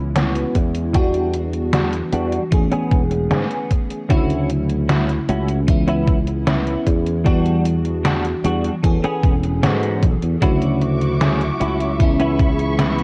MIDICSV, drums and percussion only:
0, 0, Header, 1, 2, 480
1, 0, Start_track
1, 0, Key_signature, 3, "major"
1, 0, Tempo, 789474
1, 576, Time_signature, 4, 2, 24, 8
1, 7924, End_track
2, 0, Start_track
2, 0, Title_t, "Drums"
2, 94, Note_on_c, 9, 38, 116
2, 94, Note_on_c, 9, 42, 94
2, 155, Note_off_c, 9, 38, 0
2, 155, Note_off_c, 9, 42, 0
2, 215, Note_on_c, 9, 42, 39
2, 276, Note_off_c, 9, 42, 0
2, 334, Note_on_c, 9, 42, 68
2, 335, Note_on_c, 9, 36, 63
2, 395, Note_off_c, 9, 42, 0
2, 396, Note_off_c, 9, 36, 0
2, 454, Note_on_c, 9, 42, 42
2, 515, Note_off_c, 9, 42, 0
2, 574, Note_on_c, 9, 42, 94
2, 575, Note_on_c, 9, 36, 122
2, 635, Note_off_c, 9, 42, 0
2, 636, Note_off_c, 9, 36, 0
2, 694, Note_on_c, 9, 42, 41
2, 755, Note_off_c, 9, 42, 0
2, 813, Note_on_c, 9, 42, 66
2, 874, Note_off_c, 9, 42, 0
2, 934, Note_on_c, 9, 42, 41
2, 995, Note_off_c, 9, 42, 0
2, 1053, Note_on_c, 9, 38, 124
2, 1053, Note_on_c, 9, 42, 95
2, 1114, Note_off_c, 9, 38, 0
2, 1114, Note_off_c, 9, 42, 0
2, 1174, Note_on_c, 9, 42, 41
2, 1235, Note_off_c, 9, 42, 0
2, 1293, Note_on_c, 9, 42, 65
2, 1354, Note_off_c, 9, 42, 0
2, 1414, Note_on_c, 9, 42, 40
2, 1475, Note_off_c, 9, 42, 0
2, 1534, Note_on_c, 9, 42, 99
2, 1535, Note_on_c, 9, 36, 122
2, 1594, Note_off_c, 9, 42, 0
2, 1596, Note_off_c, 9, 36, 0
2, 1654, Note_on_c, 9, 42, 42
2, 1715, Note_off_c, 9, 42, 0
2, 1775, Note_on_c, 9, 36, 107
2, 1775, Note_on_c, 9, 42, 38
2, 1835, Note_off_c, 9, 42, 0
2, 1836, Note_off_c, 9, 36, 0
2, 1894, Note_on_c, 9, 42, 40
2, 1955, Note_off_c, 9, 42, 0
2, 2014, Note_on_c, 9, 38, 121
2, 2014, Note_on_c, 9, 42, 95
2, 2074, Note_off_c, 9, 38, 0
2, 2074, Note_off_c, 9, 42, 0
2, 2134, Note_on_c, 9, 42, 40
2, 2195, Note_off_c, 9, 42, 0
2, 2254, Note_on_c, 9, 42, 68
2, 2255, Note_on_c, 9, 36, 64
2, 2315, Note_off_c, 9, 42, 0
2, 2316, Note_off_c, 9, 36, 0
2, 2374, Note_on_c, 9, 42, 41
2, 2434, Note_off_c, 9, 42, 0
2, 2493, Note_on_c, 9, 42, 95
2, 2495, Note_on_c, 9, 36, 127
2, 2554, Note_off_c, 9, 42, 0
2, 2556, Note_off_c, 9, 36, 0
2, 2615, Note_on_c, 9, 42, 39
2, 2675, Note_off_c, 9, 42, 0
2, 2734, Note_on_c, 9, 42, 66
2, 2795, Note_off_c, 9, 42, 0
2, 2854, Note_on_c, 9, 42, 39
2, 2915, Note_off_c, 9, 42, 0
2, 2974, Note_on_c, 9, 38, 127
2, 2974, Note_on_c, 9, 42, 92
2, 3035, Note_off_c, 9, 38, 0
2, 3035, Note_off_c, 9, 42, 0
2, 3095, Note_on_c, 9, 42, 38
2, 3155, Note_off_c, 9, 42, 0
2, 3214, Note_on_c, 9, 42, 64
2, 3275, Note_off_c, 9, 42, 0
2, 3333, Note_on_c, 9, 42, 41
2, 3394, Note_off_c, 9, 42, 0
2, 3453, Note_on_c, 9, 42, 97
2, 3455, Note_on_c, 9, 36, 121
2, 3514, Note_off_c, 9, 42, 0
2, 3516, Note_off_c, 9, 36, 0
2, 3574, Note_on_c, 9, 42, 40
2, 3635, Note_off_c, 9, 42, 0
2, 3694, Note_on_c, 9, 42, 36
2, 3695, Note_on_c, 9, 36, 110
2, 3755, Note_off_c, 9, 42, 0
2, 3756, Note_off_c, 9, 36, 0
2, 3814, Note_on_c, 9, 42, 39
2, 3875, Note_off_c, 9, 42, 0
2, 3934, Note_on_c, 9, 38, 120
2, 3934, Note_on_c, 9, 42, 91
2, 3995, Note_off_c, 9, 38, 0
2, 3995, Note_off_c, 9, 42, 0
2, 4055, Note_on_c, 9, 42, 39
2, 4116, Note_off_c, 9, 42, 0
2, 4174, Note_on_c, 9, 42, 67
2, 4175, Note_on_c, 9, 36, 66
2, 4235, Note_off_c, 9, 36, 0
2, 4235, Note_off_c, 9, 42, 0
2, 4295, Note_on_c, 9, 42, 40
2, 4356, Note_off_c, 9, 42, 0
2, 4414, Note_on_c, 9, 36, 121
2, 4415, Note_on_c, 9, 42, 87
2, 4475, Note_off_c, 9, 36, 0
2, 4476, Note_off_c, 9, 42, 0
2, 4535, Note_on_c, 9, 42, 37
2, 4596, Note_off_c, 9, 42, 0
2, 4655, Note_on_c, 9, 42, 63
2, 4716, Note_off_c, 9, 42, 0
2, 4774, Note_on_c, 9, 42, 39
2, 4835, Note_off_c, 9, 42, 0
2, 4895, Note_on_c, 9, 38, 123
2, 4895, Note_on_c, 9, 42, 91
2, 4955, Note_off_c, 9, 38, 0
2, 4955, Note_off_c, 9, 42, 0
2, 5015, Note_on_c, 9, 42, 38
2, 5076, Note_off_c, 9, 42, 0
2, 5135, Note_on_c, 9, 42, 64
2, 5196, Note_off_c, 9, 42, 0
2, 5256, Note_on_c, 9, 42, 39
2, 5317, Note_off_c, 9, 42, 0
2, 5375, Note_on_c, 9, 36, 117
2, 5376, Note_on_c, 9, 42, 92
2, 5436, Note_off_c, 9, 36, 0
2, 5437, Note_off_c, 9, 42, 0
2, 5496, Note_on_c, 9, 42, 39
2, 5557, Note_off_c, 9, 42, 0
2, 5615, Note_on_c, 9, 36, 108
2, 5616, Note_on_c, 9, 42, 37
2, 5675, Note_off_c, 9, 36, 0
2, 5676, Note_off_c, 9, 42, 0
2, 5735, Note_on_c, 9, 42, 38
2, 5796, Note_off_c, 9, 42, 0
2, 5855, Note_on_c, 9, 38, 122
2, 5855, Note_on_c, 9, 42, 89
2, 5916, Note_off_c, 9, 38, 0
2, 5916, Note_off_c, 9, 42, 0
2, 5975, Note_on_c, 9, 42, 37
2, 6036, Note_off_c, 9, 42, 0
2, 6095, Note_on_c, 9, 36, 64
2, 6095, Note_on_c, 9, 42, 62
2, 6155, Note_off_c, 9, 42, 0
2, 6156, Note_off_c, 9, 36, 0
2, 6215, Note_on_c, 9, 42, 40
2, 6275, Note_off_c, 9, 42, 0
2, 6334, Note_on_c, 9, 42, 86
2, 6335, Note_on_c, 9, 36, 120
2, 6395, Note_off_c, 9, 42, 0
2, 6396, Note_off_c, 9, 36, 0
2, 6455, Note_on_c, 9, 42, 37
2, 6515, Note_off_c, 9, 42, 0
2, 6575, Note_on_c, 9, 42, 60
2, 6635, Note_off_c, 9, 42, 0
2, 6695, Note_on_c, 9, 42, 37
2, 6756, Note_off_c, 9, 42, 0
2, 6814, Note_on_c, 9, 38, 121
2, 6814, Note_on_c, 9, 42, 89
2, 6875, Note_off_c, 9, 38, 0
2, 6875, Note_off_c, 9, 42, 0
2, 6936, Note_on_c, 9, 42, 37
2, 6996, Note_off_c, 9, 42, 0
2, 7056, Note_on_c, 9, 42, 62
2, 7116, Note_off_c, 9, 42, 0
2, 7175, Note_on_c, 9, 42, 38
2, 7236, Note_off_c, 9, 42, 0
2, 7295, Note_on_c, 9, 36, 114
2, 7295, Note_on_c, 9, 42, 90
2, 7356, Note_off_c, 9, 36, 0
2, 7356, Note_off_c, 9, 42, 0
2, 7415, Note_on_c, 9, 42, 37
2, 7476, Note_off_c, 9, 42, 0
2, 7535, Note_on_c, 9, 36, 107
2, 7536, Note_on_c, 9, 42, 35
2, 7596, Note_off_c, 9, 36, 0
2, 7597, Note_off_c, 9, 42, 0
2, 7656, Note_on_c, 9, 42, 37
2, 7716, Note_off_c, 9, 42, 0
2, 7776, Note_on_c, 9, 38, 115
2, 7776, Note_on_c, 9, 42, 89
2, 7837, Note_off_c, 9, 38, 0
2, 7837, Note_off_c, 9, 42, 0
2, 7896, Note_on_c, 9, 42, 37
2, 7924, Note_off_c, 9, 42, 0
2, 7924, End_track
0, 0, End_of_file